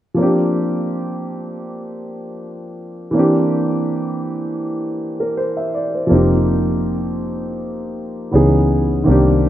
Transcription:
0.14 F3 A#3 C4
0.20 D4 G4
3.11 E3 A#3 C4
3.17 D4 G4
5.20 A#4
5.37 C5
5.57 E5
5.74 D5
5.94 C5
6.07 F3 A#3 C4
6.11 F1 D#4 G4
8.31 C#2 E3 B3 C#4 D#4 G#4
9.04 C2 D#3 A#3 C4
9.09 D4 G4

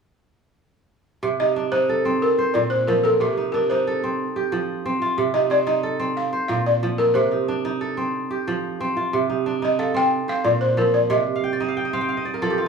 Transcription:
1.23 C3
1.40 D#4 D#5
1.56 D4
1.72 D#4 C5
1.89 A4
2.05 C4
2.22 A#4
2.38 C5
2.54 A#2 D5
2.70 C5
2.87 F3 A#4
3.04 A4 A#4
3.20 C3 G4
3.37 D#4
3.52 D4 A#4
3.70 D#4 C5
3.87 A4
4.04 C4
4.36 G4
4.52 F3
4.86 C4
5.02 F4
5.18 C3
5.34 D#4 D#5
5.50 C4 D5
5.67 D#4 D#5
5.83 A4
6.00 C4
6.17 F5
6.33 C5
6.48 A#2 F5
6.66 D5
6.83 F3
6.98 A#4
7.14 C3 C5
7.31 D#4
7.48 D4
7.65 D#4
7.81 A4
7.97 C4
8.31 G4
8.48 F3
8.80 C4
8.97 F4
9.13 C3
9.30 D#4
9.46 D4
9.62 D#4 D#5
9.79 A4 F5
9.94 C4 G5
10.28 C5 F5
10.44 A#2 D5
10.61 C5
10.77 F3 A#4
10.94 D5
11.10 C3 D#5
11.36 F5
11.44 G5
11.53 D5
11.60 D#4 D#5
11.68 F5
11.77 G5
11.85 D#5
11.93 C4 F5
12.01 G5
12.09 F5
12.17 D#5
12.25 D5
12.34 A#4
12.42 F3 A4
12.50 G4
12.58 F4

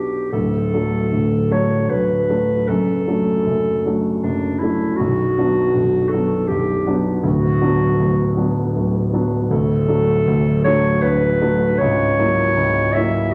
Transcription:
Already playing: B1 F#3 B3 D4 G4
0.32 D1 D2 A4
0.74 F#3 A3 D4
1.12 D1 D2
1.51 F#3 A3 D4 C#5
1.89 D1 D2 B4
2.29 F#3 A3 D4
2.68 F#1 F#2 A4
3.07 F#3 A3 D4
3.46 F#1 F#2
3.86 F#3 A3 D4
4.22 F#1 F#2 D4
4.59 F#3 A3 E4
4.64 D4
4.96 B0 B1 F#4
5.38 F#3 B3 D4
5.75 B0 B1
6.09 A4
6.13 F#3 B3 D4
6.48 B0 B1 G4
6.87 F#3 B3 D4
7.23 D1 D2 F#4
7.62 F#3 B3 D4
7.99 D1 D2
8.37 F#3 B3 D4
8.76 D1 D2
9.13 F#3 B3 D4
9.50 D1 D2 A4
9.88 F#3 A3 D4
10.27 D1 D2
10.64 F#3 A3 D4 C#5
11.02 D1 D2 B4
11.42 F#3 A3 D4
11.78 C#1 C#2 C#5
12.19 F#3 A#3 E4
12.56 C#1 C#2
12.93 F#3 A#3 E5
12.97 E4

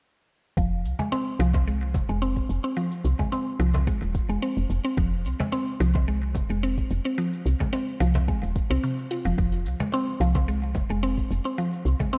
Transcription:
0.57 F1 F3, kick, shaker
0.84 C2, shaker
0.99 G#3, cajon bass, cajon slap, shaker
1.12 C4, cajon slap, shaker
1.39 C2 F3, shaker
1.54 cajon bass, kick, cajon slap, shaker
1.67 G#3, shaker
1.94 D#1, cajon bass, kick, shaker
2.09 F1 G#3, shaker
2.22 C4, shaker
2.36 kick, cajon slap, shaker
2.49 F1, shaker
2.64 C4, shaker
2.77 F3, shaker
2.92 shaker
3.05 C2, shaker
3.19 G#3, kick, cajon bass, shaker
3.32 C4, cajon slap, shaker
3.60 C2 F3, shaker
3.74 cajon bass, cajon slap, shaker
3.87 G#3, kick, shaker
4.02 D#1, shaker
4.15 kick, shaker
4.29 F1 G#3, shaker
4.42 C4, shaker
4.57 F1, shaker
4.70 F1, shaker
4.85 C4, shaker
4.98 F1 F3, kick, shaker
5.25 C2, shaker
5.40 G#3, cajon bass, cajon slap, shaker
5.52 C4, cajon slap, shaker
5.80 C2 F3, shaker
5.95 kick, cajon bass, cajon slap, shaker
6.08 G#3, shaker
6.35 D#1, cajon bass, kick, shaker
6.50 F1 G#3, shaker
6.63 C4, shaker
6.78 kick, cajon slap, shaker
6.90 F1, shaker
7.05 C4, shaker
7.18 F3, shaker
7.33 shaker
7.46 C2, shaker
7.60 G#3, kick, cajon bass, cajon slap, shaker
7.73 C4, cajon slap, shaker
8.00 C2 F3, shaker
8.15 cajon bass, cajon slap, shaker
8.28 G#3, kick, shaker
8.43 D#1, shaker
8.56 kick, shaker
8.70 C2 C4, shaker
8.83 C3, shaker
8.98 shaker
9.11 F4, shaker
9.25 F1 F3, shaker
9.38 F1 F3, kick, shaker
9.66 C2, shaker
9.80 G#3, cajon bass, cajon slap, shaker
9.92 C4, cajon slap, shaker
10.20 C2 F3, shaker
10.35 kick, cajon bass, cajon slap, shaker
10.48 G#3, shaker
10.75 D#1, cajon bass, kick, shaker
10.90 F1 G#3, shaker
11.03 C4, shaker
11.17 kick, cajon slap, shaker
11.31 F1, shaker
11.45 C4, shaker
11.58 F3, shaker
11.73 shaker
11.85 C2, shaker
12.00 G#3, cajon bass, kick, shaker
12.13 C4, cajon slap, shaker

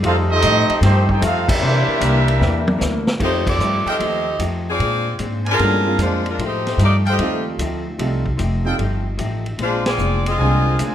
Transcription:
0.02 F2 F3 G3 A3 C4 D#4 F4 G4 A4 C5 F5, ride
0.30 A3 C4 D#4 G4 A4 D#5
0.42 A2 F3 A3 D#4 G4, hi-hat pedal, ride
0.70 muted upright bass stroke, ride
0.81 G2 D#3 F3 A3 C4 D#4 G4 C5, snare, ride
1.08 C4 D#4 G4 A4 C5 G5, kick
1.21 F2 F3 A3 C4 D#4 F4 G4 A4 C5 F5, hi-hat pedal, ride
1.46 G3 A#3 D4 E4 G4 A#4 E5, kick, crash
1.60 C3 E3 A#3 D4 E4 C5
1.88 muted upright bass stroke
1.99 C2 C3 E3 A#3 D4, hi-hat pedal, ride
2.28 ride
2.38 E2 C3 E3 A#3 D4, snare
2.68 high tom
2.78 D2 C3 E3 A#3 D4, snare, hi-hat pedal
3.07 snare
3.19 F2 F3 G3 A3 C4 D#4 F4 G4 C5, kick, crash
3.23 A3 D#4
3.47 C4 G4 A4 D5, kick, crash
3.58 G2 F3 A3 D#4 G4, hi-hat pedal
3.86 C4 G4 A4 D#5 F5 G5, muted upright bass stroke, ride
3.99 D#2 F3 A3 D#4 G4, ride
4.39 F2 F3 A3 D#4 G4, hi-hat pedal, ride
4.70 C4 F4 G#4 D5
4.79 A#2 G#3 C4 D4, ride
5.19 G#2 A#2 G#3 C4 D4, hi-hat pedal, ride
5.45 A#4 C5 D5 G#5, ride
5.51 D4 F4 G#4 A#4
5.59 G2 A#2 G#3 A3 B3 C4 C#4 D4 D#4 F#4, ride
5.85 G#3 A#3 C4 D4 F4
5.98 F2 A#2 G#3 C4 D4, hi-hat pedal, ride
6.03 G#3 D4 F4 C5
6.26 G#3 F4, ride
6.30 D4 A#4
6.38 A2 F3 A3 D#4 G4, ride
6.44 A3 D#4 G4 C5
6.67 snare, ride
6.78 G2 F3 A3 D#4 G4, hi-hat pedal, ride
6.83 A#3 D#4 G4 D5
7.05 A4 C5 D#5 F5 G5, ride
7.10 A3 D#4 G4
7.18 D#2 F3 G3 A3 C4 D#4 F4, ride
7.22 G4
7.58 D2 F3 A3 D#4 G4, hi-hat pedal, ride
7.98 C2 F3 G3 A3 C4 D#4 F4 G4, ride
8.26 kick
8.37 F1 F3 A3 D#4 G4, hi-hat pedal, ride
8.65 G3 A3 C4 D#4 F4 A4 D#5 F5 G5
8.78 G1 F3 A3 D#4 G4, ride
9.18 A1 F3 A3 D#4 G4, hi-hat pedal, ride
9.46 ride
9.58 A#1 A#2 G#3 C4 D4 F4 C5, ride
9.86 C4 F4 G#4 D5, snare, ride
9.98 F1 A#2 G#3 C4 D4, hi-hat pedal
10.26 C4 F4 G#4 D#5, ride
10.38 C2 A#2 D3 G#3 A#3 C4 F4 A#4 C5 F5 G#5
10.42 D4
10.79 D2 A#2 G#3 C4 D4, hi-hat pedal, ride

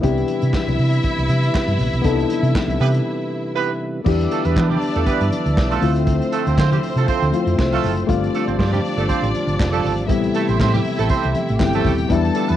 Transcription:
Already playing: C3 E3 E4
0.01 C2 G3 B3 D4 E4 G4 E5, kick, closed hi-hat
0.18 closed hi-hat, muted conga
0.28 closed hi-hat, high conga
0.42 C3, closed hi-hat
0.53 kick, snare, clap, high conga
0.68 C2, closed hi-hat, muted conga, high conga, low conga
0.78 C3, open hi-hat
0.93 closed hi-hat
1.03 kick, closed hi-hat
1.18 C2, closed hi-hat, muted conga
1.29 C3, closed hi-hat, high conga
1.43 closed hi-hat
1.54 kick, snare, clap, muted conga
1.67 G2, closed hi-hat, muted conga, high conga
1.79 A#1, snare, open hi-hat, low conga
1.93 B1, closed hi-hat
2.02 C2 B3 D4 D#4 A4, kick, closed hi-hat
2.10 E4
2.19 closed hi-hat, muted conga
2.30 closed hi-hat, high conga
2.43 C3, closed hi-hat
2.55 kick, snare, clap, high conga
2.68 C2, closed hi-hat, high conga, low conga
2.80 C3 B3 E4 G4 B4, open hi-hat
2.94 closed hi-hat
3.56 B3 E4 G4 B4
4.04 E2 D3 E3 G3 B3 D4 E4 G4 D5 E5, kick, crash
4.21 closed hi-hat
4.31 A3 D4 F4 A4, closed hi-hat
4.45 E2 B3 E4 G4 B4, closed hi-hat
4.56 E3 B3 E4 G4 B4, kick, snare, clap, muted conga, high conga
4.70 G3 D4 E4 G4, closed hi-hat, muted conga, high conga, low conga
4.82 open hi-hat
4.95 E2 A3 D4 F4 A4, closed hi-hat
5.06 B3 E4 G4 B4, kick, closed hi-hat
5.21 G2, closed hi-hat
5.31 closed hi-hat, high conga
5.46 D2, closed hi-hat
5.57 B1, kick, snare, clap, muted conga
5.70 A3 F4 A4, closed hi-hat, high conga
5.80 D2 F3 A3 C4 E4 F4 C5, open hi-hat, low conga
5.96 closed hi-hat
6.07 kick, closed hi-hat, muted conga
6.22 closed hi-hat, muted conga
6.32 A3 F4 A4, closed hi-hat
6.47 D2 C4 F4 A4 C5, closed hi-hat
6.57 D3 C4 F4 A4 C5, kick, snare, clap, muted conga, high conga
6.72 G3 C4 E4 G4, closed hi-hat, muted conga, high conga, low conga
6.83 open hi-hat
6.96 C3 A3 F4 A4, closed hi-hat
7.08 C4 F4 A4 C5, kick, closed hi-hat, muted conga
7.22 D2, closed hi-hat
7.32 A3 C4 E4 F4, closed hi-hat, high conga
7.46 F2, closed hi-hat
7.59 C2, kick, snare, clap
7.72 A3 F4 A4, closed hi-hat, high conga
7.84 F#1, snare, open hi-hat, low conga
7.98 closed hi-hat
8.07 G1 G3 A3 B3 D4 F4 D5, kick, closed hi-hat, muted conga
8.14 C4
8.23 closed hi-hat, muted conga
8.34 A3 D4 F4 A4, closed hi-hat
8.48 G1 C4 F4 G4 C5, closed hi-hat
8.59 G2 C4 F4 G4 C5, kick, snare, clap, high conga
8.73 G3 C4 D4 G4, closed hi-hat, muted conga, high conga, low conga
8.85 open hi-hat
8.97 G1 A3 D4 F4 A4, closed hi-hat
9.09 C4 F4 G4 C5, kick, closed hi-hat, muted conga
9.22 A1, closed hi-hat, muted conga
9.35 closed hi-hat, high conga
9.47 G1, closed hi-hat
9.60 F1, kick, snare, clap
9.73 A3 D4 F4 A4, closed hi-hat, high conga
9.84 G#1, snare, open hi-hat, low conga
9.98 closed hi-hat
10.07 A1 C3 E3 G3 A3 B3 C4 E4 G4 E5, kick, closed hi-hat
10.24 closed hi-hat, muted conga
10.34 A3 C4 E4 A4, closed hi-hat
10.48 A1 C4 G4 A4 C5, closed hi-hat
10.59 A2 C4 G4 A4 C5, kick, snare, clap, muted conga, high conga
10.74 G3 C4 E4 G4, closed hi-hat, muted conga, high conga, low conga
10.84 open hi-hat
10.99 A1 A3 C4 E4 A4, closed hi-hat
11.09 C4 G4 A4 C5, kick, closed hi-hat, muted conga
11.23 C2, closed hi-hat
11.35 closed hi-hat, high conga
11.48 A1, closed hi-hat
11.59 G1 G3 B3 C4 E4 G4 G5, kick, snare, clap
11.73 A3 C4 E4 A4, closed hi-hat, muted conga, high conga
11.84 D#1, kick, snare, open hi-hat, low conga
11.98 closed hi-hat
12.08 E2 D3 F#3 B3 D4 E4 A4 A5, kick, closed hi-hat
12.14 G3
12.24 closed hi-hat, muted conga
12.34 A3 D4 F4 A4, closed hi-hat
12.48 E2 B3 E4 G4 B4, closed hi-hat

